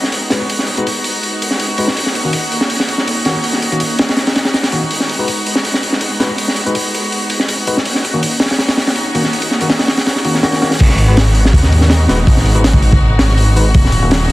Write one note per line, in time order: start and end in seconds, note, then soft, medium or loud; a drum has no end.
0.00 1.94 G#3 medium
0.00 1.94 B3 medium
0.00 7.82 D#4 medium
0.00 7.82 F#4 medium
0.00 snare soft
0.12 open hi-hat medium
0.30 0.40 G#3 medium
0.30 0.40 D#4 medium
0.30 0.40 F#4 medium
0.30 0.40 B4 medium
0.30 snare medium
0.30 open hi-hat medium
0.50 open hi-hat medium
0.59 snare soft
0.67 open hi-hat medium
0.77 0.85 G#3 medium
0.77 0.85 D#4 medium
0.77 0.85 F#4 medium
0.77 0.85 B4 medium
0.77 closed hi-hat soft
0.87 open hi-hat medium
1.04 open hi-hat medium
1.23 open hi-hat medium
1.42 open hi-hat medium
1.51 snare soft
1.60 open hi-hat medium
1.78 1.87 G#3 medium
1.78 1.87 D#4 medium
1.78 1.87 F#4 medium
1.78 1.87 B4 medium
1.78 open hi-hat medium
1.88 snare soft
1.97 4.88 A#3 medium
1.97 4.88 C#4 medium
1.97 open hi-hat medium
2.06 snare soft
2.15 open hi-hat medium
2.25 2.33 D#3 medium
2.25 2.33 A#3 medium
2.25 2.33 C#4 medium
2.25 2.33 F#4 medium
2.33 open hi-hat medium
2.52 open hi-hat medium
2.61 snare soft
2.70 open hi-hat medium
2.80 snare medium
2.89 open hi-hat medium
2.98 snare soft
3.08 open hi-hat medium
3.25 3.34 D#3 medium
3.25 3.34 A#3 medium
3.25 3.34 C#4 medium
3.25 3.34 F#4 medium
3.25 snare medium
3.25 open hi-hat medium
3.44 open hi-hat medium
3.53 snare soft
3.62 open hi-hat medium
3.72 3.80 D#3 medium
3.72 3.80 A#3 medium
3.72 3.80 C#4 medium
3.72 3.80 F#4 medium
3.72 closed hi-hat soft
3.80 open hi-hat medium
3.99 snare loud
3.99 open hi-hat medium
4.09 snare loud
4.09 open hi-hat medium
4.17 snare loud
4.17 open hi-hat medium
4.27 snare loud
4.27 open hi-hat medium
4.36 snare loud
4.36 open hi-hat medium
4.45 snare loud
4.45 open hi-hat medium
4.54 snare loud
4.54 open hi-hat medium
4.63 snare loud
4.63 open hi-hat medium
4.72 4.81 D#3 medium
4.72 4.81 A#3 medium
4.72 4.81 C#4 medium
4.72 4.81 F#4 medium
4.72 open hi-hat medium
4.91 7.83 G#3 medium
4.91 7.83 B3 medium
4.91 open hi-hat medium
5.00 snare soft
5.09 open hi-hat medium
5.19 5.27 G#3 medium
5.19 5.27 D#4 medium
5.19 5.27 F#4 medium
5.19 5.27 B4 medium
5.28 open hi-hat medium
5.46 open hi-hat medium
5.55 snare medium
5.65 open hi-hat medium
5.74 snare medium
5.83 open hi-hat medium
5.93 snare soft
6.01 open hi-hat medium
6.20 6.29 G#3 medium
6.20 6.29 D#4 medium
6.20 6.29 F#4 medium
6.20 6.29 B4 medium
6.20 snare medium
6.20 open hi-hat medium
6.38 open hi-hat medium
6.48 snare soft
6.56 open hi-hat medium
6.66 6.74 G#3 medium
6.66 6.74 D#4 medium
6.66 6.74 F#4 medium
6.66 6.74 B4 medium
6.66 closed hi-hat soft
6.75 open hi-hat medium
6.94 open hi-hat medium
7.12 open hi-hat medium
7.30 open hi-hat medium
7.40 snare soft
7.49 open hi-hat medium
7.67 7.76 G#3 medium
7.67 7.76 D#4 medium
7.67 7.76 F#4 medium
7.67 7.76 B4 medium
7.67 open hi-hat medium
7.77 snare soft
7.85 10.77 A#3 medium
7.85 10.77 C#4 medium
7.85 10.77 D#4 medium
7.85 10.77 F#4 medium
7.85 open hi-hat medium
7.95 snare soft
8.05 open hi-hat medium
8.14 8.22 D#3 medium
8.14 8.22 A#3 medium
8.14 8.22 C#4 medium
8.14 8.22 F#4 medium
8.23 open hi-hat medium
8.40 snare medium
8.40 open hi-hat medium
8.45 snare medium
8.45 open hi-hat medium
8.50 snare medium
8.50 open hi-hat medium
8.58 snare loud
8.58 open hi-hat medium
8.68 snare loud
8.68 open hi-hat medium
8.77 snare loud
8.77 open hi-hat medium
8.87 snare loud
8.87 open hi-hat medium
8.96 open hi-hat medium
9.15 9.23 D#3 medium
9.15 9.23 A#3 medium
9.15 9.23 C#4 medium
9.15 9.23 F#4 medium
9.15 open hi-hat medium
9.24 snare soft
9.33 open hi-hat medium
9.42 open hi-hat medium
9.51 snare soft
9.61 9.69 D#3 medium
9.61 9.69 A#3 medium
9.61 9.69 C#4 medium
9.61 9.69 F#4 medium
9.61 open hi-hat medium
9.70 snare medium
9.70 open hi-hat medium
9.79 snare loud
9.79 open hi-hat medium
9.88 snare loud
9.88 open hi-hat medium
9.97 snare medium
9.97 open hi-hat medium
10.06 snare loud
10.06 open hi-hat medium
10.16 snare medium
10.25 10.38 D#3 medium
10.25 10.38 A#3 medium
10.25 10.38 C#4 medium
10.25 10.38 F#4 medium
10.25 open hi-hat medium
10.35 snare soft
10.43 10.60 D#3 loud
10.43 10.60 A#3 medium
10.43 10.60 C#4 medium
10.43 10.60 F#4 loud
10.43 snare loud
10.43 open hi-hat medium
10.52 snare loud
10.52 open hi-hat medium
10.62 10.70 D#3 medium
10.62 10.70 A#3 medium
10.62 10.70 C#4 medium
10.62 10.70 F#4 medium
10.62 snare loud
10.62 open hi-hat medium
10.71 snare loud
10.71 open hi-hat medium
10.79 11.52 G#1 loud
10.79 13.72 G#3 medium
10.79 13.72 B3 medium
10.79 13.72 D#4 medium
10.79 14.32 F#4 medium
10.79 kick loud
10.79 open hi-hat medium
10.79 crash medium
10.89 snare soft
10.98 open hi-hat medium
11.08 11.16 G#3 medium
11.08 11.16 D#4 medium
11.08 11.16 F#4 medium
11.08 11.16 B4 medium
11.17 snare loud
11.17 open hi-hat medium
11.35 open hi-hat medium
11.45 snare medium
11.53 12.07 D#2 medium
11.53 kick loud
11.53 open hi-hat medium
11.63 snare soft
11.72 open hi-hat medium
11.81 snare soft
11.90 snare loud
11.90 open hi-hat medium
12.08 12.26 D#1 medium
12.08 12.18 G#3 medium
12.08 12.18 D#4 medium
12.08 12.18 F#4 medium
12.08 12.18 B4 medium
12.08 snare medium
12.08 open hi-hat medium
12.27 12.99 G#1 medium
12.27 kick loud
12.27 open hi-hat medium
12.37 snare soft
12.46 open hi-hat medium
12.55 12.63 G#3 medium
12.55 12.63 D#4 medium
12.55 12.63 F#4 medium
12.55 12.63 B4 medium
12.55 closed hi-hat soft
12.64 snare loud
12.64 open hi-hat medium
12.73 kick loud
12.82 open hi-hat medium
12.92 kick loud
13.01 13.18 G#1 medium
13.19 13.73 G#1 medium
13.19 snare loud
13.19 open hi-hat medium
13.29 snare soft
13.38 open hi-hat medium
13.56 13.65 G#3 medium
13.56 13.65 D#4 medium
13.56 13.65 F#4 medium
13.56 13.65 B4 medium
13.56 open hi-hat medium
13.74 14.32 D#1 loud
13.74 14.32 A#3 medium
13.74 14.32 C#4 medium
13.74 14.32 D#4 medium
13.74 kick loud
13.74 open hi-hat medium
13.85 snare soft
13.92 open hi-hat medium
14.03 14.11 D#3 medium
14.03 14.11 A#3 medium
14.03 14.10 C#4 medium
14.03 14.11 F#4 medium
14.11 snare loud
14.11 open hi-hat medium